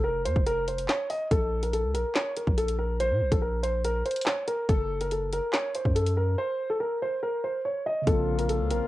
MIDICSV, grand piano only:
0, 0, Header, 1, 2, 480
1, 0, Start_track
1, 0, Tempo, 422535
1, 1488, Time_signature, 4, 2, 24, 8
1, 10082, End_track
2, 0, Start_track
2, 0, Title_t, "Grand piano"
2, 0, Program_c, 0, 0
2, 44, Note_on_c, 0, 70, 85
2, 236, Note_off_c, 0, 70, 0
2, 286, Note_on_c, 0, 72, 81
2, 478, Note_off_c, 0, 72, 0
2, 528, Note_on_c, 0, 70, 95
2, 719, Note_off_c, 0, 70, 0
2, 770, Note_on_c, 0, 72, 71
2, 960, Note_off_c, 0, 72, 0
2, 1013, Note_on_c, 0, 73, 81
2, 1202, Note_off_c, 0, 73, 0
2, 1246, Note_on_c, 0, 75, 77
2, 1438, Note_off_c, 0, 75, 0
2, 1490, Note_on_c, 0, 69, 96
2, 1828, Note_off_c, 0, 69, 0
2, 1849, Note_on_c, 0, 70, 73
2, 1944, Note_off_c, 0, 70, 0
2, 1966, Note_on_c, 0, 69, 77
2, 2157, Note_off_c, 0, 69, 0
2, 2207, Note_on_c, 0, 70, 82
2, 2398, Note_off_c, 0, 70, 0
2, 2447, Note_on_c, 0, 73, 91
2, 2638, Note_off_c, 0, 73, 0
2, 2691, Note_on_c, 0, 70, 63
2, 2881, Note_off_c, 0, 70, 0
2, 2928, Note_on_c, 0, 69, 89
2, 3119, Note_off_c, 0, 69, 0
2, 3166, Note_on_c, 0, 70, 83
2, 3358, Note_off_c, 0, 70, 0
2, 3410, Note_on_c, 0, 72, 101
2, 3748, Note_off_c, 0, 72, 0
2, 3770, Note_on_c, 0, 69, 82
2, 3865, Note_off_c, 0, 69, 0
2, 3885, Note_on_c, 0, 70, 77
2, 4077, Note_off_c, 0, 70, 0
2, 4126, Note_on_c, 0, 72, 82
2, 4318, Note_off_c, 0, 72, 0
2, 4370, Note_on_c, 0, 70, 92
2, 4560, Note_off_c, 0, 70, 0
2, 4608, Note_on_c, 0, 72, 73
2, 4799, Note_off_c, 0, 72, 0
2, 4850, Note_on_c, 0, 73, 78
2, 5040, Note_off_c, 0, 73, 0
2, 5086, Note_on_c, 0, 70, 85
2, 5278, Note_off_c, 0, 70, 0
2, 5328, Note_on_c, 0, 69, 105
2, 5667, Note_off_c, 0, 69, 0
2, 5691, Note_on_c, 0, 70, 84
2, 5785, Note_off_c, 0, 70, 0
2, 5812, Note_on_c, 0, 69, 71
2, 6002, Note_off_c, 0, 69, 0
2, 6056, Note_on_c, 0, 70, 82
2, 6244, Note_off_c, 0, 70, 0
2, 6284, Note_on_c, 0, 73, 95
2, 6476, Note_off_c, 0, 73, 0
2, 6534, Note_on_c, 0, 72, 77
2, 6723, Note_off_c, 0, 72, 0
2, 6763, Note_on_c, 0, 69, 78
2, 6956, Note_off_c, 0, 69, 0
2, 7008, Note_on_c, 0, 70, 76
2, 7199, Note_off_c, 0, 70, 0
2, 7249, Note_on_c, 0, 72, 100
2, 7587, Note_off_c, 0, 72, 0
2, 7609, Note_on_c, 0, 69, 82
2, 7704, Note_off_c, 0, 69, 0
2, 7726, Note_on_c, 0, 70, 82
2, 7918, Note_off_c, 0, 70, 0
2, 7976, Note_on_c, 0, 72, 83
2, 8164, Note_off_c, 0, 72, 0
2, 8209, Note_on_c, 0, 70, 87
2, 8400, Note_off_c, 0, 70, 0
2, 8450, Note_on_c, 0, 72, 75
2, 8640, Note_off_c, 0, 72, 0
2, 8691, Note_on_c, 0, 73, 75
2, 8881, Note_off_c, 0, 73, 0
2, 8930, Note_on_c, 0, 75, 72
2, 9120, Note_off_c, 0, 75, 0
2, 9168, Note_on_c, 0, 69, 94
2, 9507, Note_off_c, 0, 69, 0
2, 9528, Note_on_c, 0, 70, 75
2, 9623, Note_off_c, 0, 70, 0
2, 9648, Note_on_c, 0, 69, 78
2, 9839, Note_off_c, 0, 69, 0
2, 9894, Note_on_c, 0, 70, 81
2, 10082, Note_off_c, 0, 70, 0
2, 10082, End_track
0, 0, End_of_file